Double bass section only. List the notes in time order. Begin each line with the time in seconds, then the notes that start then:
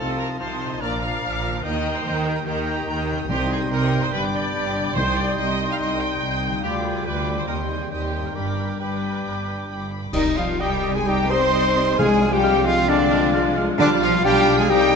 0.00 C2
0.39 C2
0.81 A#1
1.23 A#1
1.64 D#2
2.05 D#2
2.47 D#2
2.88 D#2
3.29 C2
3.70 C2
4.13 G1
4.55 G1
4.96 C2
5.38 C2
5.80 C2
6.22 C2
6.64 D2
7.06 D2
7.48 D#2
7.92 D#2
8.35 G1
8.80 G1
9.25 G1
9.68 G1
10.13 C2
11.99 C2
13.80 B1
14.70 C2